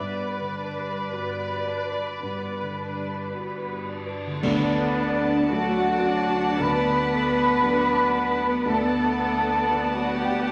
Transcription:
0.00 2.19 G2 soft
0.00 1.00 G2 soft
0.00 0.54 B3 soft
0.00 0.24 B4 soft
0.00 3.84 B4 soft
0.00 0.54 B4 soft
0.00 3.87 D5 medium
0.40 0.99 D3 soft
0.57 1.13 D4 soft
0.57 1.13 D5 soft
0.77 1.36 G3 soft
1.12 2.10 G2 soft
1.12 1.68 B3 soft
1.12 1.50 F#4 soft
1.12 1.68 B4 soft
1.49 2.09 G3 soft
1.68 2.24 D4 soft
1.68 2.24 D5 soft
1.87 2.46 B4 soft
2.23 4.39 G2 soft
2.23 3.21 G2 soft
2.23 2.75 B3 soft
2.23 2.75 B4 soft
2.61 3.19 D3 soft
2.79 3.34 D4 soft
2.79 3.34 D5 soft
2.96 3.55 G3 soft
3.33 4.31 G2 soft
3.33 3.89 B3 soft
3.33 3.70 F#4 soft
3.33 3.88 B4 soft
3.70 4.29 G3 soft
3.89 4.44 D4 soft
3.89 4.44 D5 soft
4.06 4.43 B4 soft
4.26 8.16 D3 medium
4.31 8.21 A3 soft
4.35 8.25 D4 medium
4.39 6.56 D2 medium
4.39 6.01 D3 medium
4.39 6.56 D3 medium
4.39 5.47 B3 medium
4.39 8.29 A4 medium
4.39 8.62 A5 medium
4.39 concert bass drum medium
4.39 crash medium
4.44 8.62 D2 medium
4.44 5.47 D3 medium
4.44 5.47 D4 loud
4.44 5.47 D5 medium
4.44 8.63 D5 medium
4.44 8.63 F#5 medium
5.50 6.60 F#3 medium
5.50 6.56 F#3 soft
5.50 6.05 A3 medium
5.50 6.57 D4 soft
5.50 6.60 F#4 medium
5.50 6.57 A4 soft
5.50 6.60 F#5 medium
6.05 6.60 D4 medium
6.59 8.62 D2 medium
6.59 8.62 D3 medium
6.59 8.66 B3 loud
6.59 7.13 B3 medium
6.59 8.66 B4 loud
6.59 8.66 B5 loud
7.13 7.64 A3 medium
7.64 8.62 F#3 medium
7.64 8.62 D4 medium
7.64 8.15 D4 medium
7.64 8.62 A4 medium
8.15 10.52 B3 medium
8.65 10.52 D2 medium
8.65 10.52 D3 medium
8.65 9.93 A3 medium
8.65 9.95 A4 medium
8.65 10.52 D5 medium
8.65 10.52 F#5 medium
8.65 9.92 A5 medium
8.65 10.52 A5 medium
9.70 10.52 A3 soft
9.70 10.52 D4 soft
9.70 10.52 A4 medium
9.95 10.21 F#3 medium
9.95 10.20 F#4 medium
9.95 10.20 F#5 medium
10.20 10.52 G3 medium
10.20 10.52 G4 medium
10.20 10.52 G5 medium

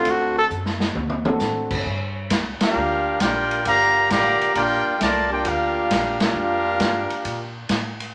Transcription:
0.00 0.48 A3 medium
0.00 0.48 C4 medium
0.00 0.48 D4 medium
0.00 0.12 F4 loud
0.00 0.48 F#4 medium
0.00 0.48 A4 medium
0.05 0.49 D2 medium
0.05 kick soft
0.05 ride medium
0.10 0.38 F#4 medium
0.38 0.46 A4 loud
0.50 0.94 F#2 loud
0.50 hi-hat pedal medium
0.66 snare medium
0.80 snare medium
0.95 1.39 D2 medium
0.95 mid tom medium
1.10 mid tom medium
1.25 1.83 A3 medium
1.25 1.83 C4 medium
1.25 1.83 D4 medium
1.25 1.83 F#4 medium
1.25 1.84 A4 medium
1.25 mid tom loud
1.39 1.84 A2 medium
1.39 snare medium
1.39 hi-hat pedal medium
1.70 kick medium
1.70 crash medium
1.85 2.29 G2 medium
1.85 kick soft
2.30 2.59 C2 loud
2.30 kick soft
2.30 snare medium
2.30 hi-hat pedal medium
2.30 ride medium
2.60 3.17 A#3 medium
2.60 3.17 D4 medium
2.60 3.18 D4 medium
2.60 3.17 F4 medium
2.60 3.18 G4 loud
2.60 3.18 A#4 loud
2.60 3.18 F5 loud
2.60 muted upright bass stroke soft
2.60 snare loud
2.60 ride medium
2.76 3.19 D2 medium
3.20 3.64 A#1 medium
3.20 3.62 A#3 medium
3.20 3.66 D4 medium
3.20 3.66 F4 medium
3.20 3.66 G4 medium
3.20 3.66 A#4 medium
3.20 3.66 D5 medium
3.20 3.66 G5 loud
3.20 kick soft
3.20 snare medium
3.20 hi-hat pedal medium
3.20 ride medium
3.51 ride medium
3.64 4.09 G1 medium
3.64 4.06 D3 medium
3.64 4.07 F3 medium
3.64 4.06 A#3 medium
3.64 4.08 G4 loud
3.64 4.08 D5 loud
3.64 4.08 F5 loud
3.64 4.08 A#5 loud
3.64 kick soft
3.64 ride medium
4.08 4.39 A1 loud
4.08 4.51 D3 loud
4.08 4.51 F3 loud
4.08 4.51 A#3 loud
4.08 4.53 G4 loud
4.08 4.53 D5 loud
4.08 4.53 F5 loud
4.08 4.53 A#5 loud
4.08 kick soft
4.08 snare medium
4.08 hi-hat pedal medium
4.08 ride medium
4.41 muted upright bass stroke soft
4.41 ride medium
4.54 4.84 A#1 loud
4.54 4.96 A#3 loud
4.54 4.96 D4 medium
4.54 4.98 F4 loud
4.54 4.97 G4 loud
4.54 4.98 A#4 loud
4.54 4.98 D5 medium
4.54 4.98 G5 loud
4.54 kick soft
4.54 ride medium
4.98 5.44 C2 loud
4.98 5.27 A3 medium
4.98 5.29 F4 medium
4.98 5.29 A#4 medium
4.98 kick soft
4.98 snare medium
4.98 hi-hat pedal medium
4.98 ride medium
5.02 5.30 D5 medium
5.02 5.30 A5 loud
5.28 5.41 A#3 medium
5.28 5.41 D4 medium
5.28 5.43 G4 medium
5.32 5.45 F4 medium
5.32 5.45 A#4 medium
5.32 5.45 D5 medium
5.32 5.45 G5 medium
5.42 5.89 D2 loud
5.42 6.18 A#3 medium
5.42 6.18 D4 medium
5.42 6.18 F4 medium
5.42 kick soft
5.42 ride medium
5.47 6.21 D4 medium
5.47 6.21 G4 medium
5.47 6.21 A#4 medium
5.47 6.21 F5 loud
5.90 6.34 A#1 loud
5.90 kick soft
5.90 snare medium
5.90 hi-hat pedal medium
5.90 ride medium
6.19 7.51 A#3 medium
6.19 7.51 D4 medium
6.19 7.52 D4 medium
6.19 7.51 F4 medium
6.19 7.52 G4 medium
6.19 7.52 A#4 medium
6.19 7.52 F5 loud
6.19 snare loud
6.19 ride medium
6.34 6.79 F2 medium
6.80 7.09 G2 loud
6.80 kick soft
6.80 snare medium
6.80 hi-hat pedal medium
6.80 ride medium
7.10 muted upright bass stroke soft
7.10 ride medium
7.25 7.69 A#2 medium
7.25 kick soft
7.25 ride medium
7.69 8.14 A2 loud
7.69 kick soft
7.69 snare medium
7.69 hi-hat pedal medium
7.69 ride medium
8.00 ride medium

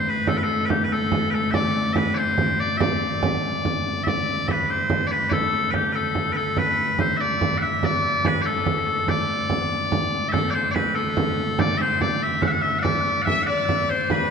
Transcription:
0.00 4.05 D2 medium
0.07 0.28 B4 medium
0.07 frame drum soft
0.27 0.37 A4 medium
0.27 frame drum medium
0.37 0.43 B4 medium
0.43 0.66 A4 medium
0.66 0.70 B4 medium
0.70 0.84 G4 medium
0.70 frame drum medium
0.84 0.93 B4 medium
0.93 1.31 A4 medium
1.12 frame drum medium
1.31 1.51 A4 medium
1.31 1.34 B4 medium
1.31 frame drum soft
1.51 1.93 D5 medium
1.51 1.54 E5 medium
1.51 frame drum medium
1.93 2.14 B4 medium
1.93 1.97 E5 medium
1.93 frame drum medium
2.14 2.60 C5 medium
2.14 2.18 D5 medium
2.38 frame drum medium
2.60 2.77 D5 medium
2.60 frame drum soft
2.77 4.03 D5 medium
2.77 2.80 E5 medium
2.77 frame drum medium
3.01 frame drum soft
3.23 frame drum medium
3.65 frame drum medium
4.03 9.07 D2 medium
4.03 4.08 E5 medium
4.03 frame drum medium
4.08 4.48 D5 medium
4.48 4.70 B4 medium
4.48 4.51 E5 medium
4.48 frame drum medium
4.70 5.07 C5 medium
4.90 frame drum medium
5.07 5.11 D5 medium
5.07 frame drum soft
5.11 5.29 B4 medium
5.29 5.71 A4 medium
5.29 5.33 D5 medium
5.29 frame drum medium
5.71 5.92 G4 medium
5.71 5.75 B4 medium
5.71 frame drum medium
5.92 6.33 A4 medium
5.92 5.96 B4 medium
6.15 frame drum medium
6.33 6.58 A4 medium
6.33 6.36 B4 medium
6.33 frame drum soft
6.57 7.00 B4 medium
6.57 frame drum medium
6.99 7.17 C5 medium
6.99 frame drum medium
7.17 7.58 D5 medium
7.17 7.20 E5 medium
7.41 frame drum medium
7.58 7.62 F#5 medium
7.62 7.85 E5 medium
7.62 frame drum soft
7.83 8.26 D5 medium
7.83 frame drum medium
8.03 frame drum soft
8.25 8.42 B4 medium
8.25 frame drum medium
8.42 8.46 D5 medium
8.46 9.09 A4 medium
8.66 frame drum medium
8.87 frame drum soft
9.08 14.09 D2 medium
9.08 10.29 D5 medium
9.08 frame drum medium
9.50 frame drum medium
9.92 frame drum medium
10.13 frame drum soft
10.29 10.50 A4 medium
10.29 10.32 E5 medium
10.34 frame drum medium
10.50 10.71 C5 medium
10.50 10.54 D5 medium
10.71 10.95 B4 medium
10.71 10.74 D5 medium
10.76 frame drum medium
10.95 11.60 A4 medium
11.17 frame drum medium
11.38 frame drum soft
11.59 11.77 D5 medium
11.59 frame drum medium
11.77 12.01 C5 medium
11.77 11.81 E5 medium
12.01 12.22 D5 medium
12.01 frame drum medium
12.22 12.42 E5 medium
12.42 12.47 F#5 medium
12.42 frame drum medium
12.47 12.52 E5 medium
12.52 12.61 F#5 medium
12.61 12.79 E5 medium
12.61 frame drum soft
12.79 13.22 D5 medium
12.79 12.82 F#5 medium
12.85 frame drum medium
13.06 frame drum soft
13.22 13.43 E5 medium
13.22 13.25 F#5 medium
13.27 13.47 E5 medium
13.27 frame drum medium
13.43 13.89 D5 medium
13.43 13.46 F#5 medium
13.49 13.91 D5 medium
13.69 frame drum medium
13.89 14.11 C5 medium
13.89 14.12 C5 medium
13.89 frame drum soft
14.10 14.30 D2 medium
14.10 14.30 B4 medium
14.10 frame drum medium

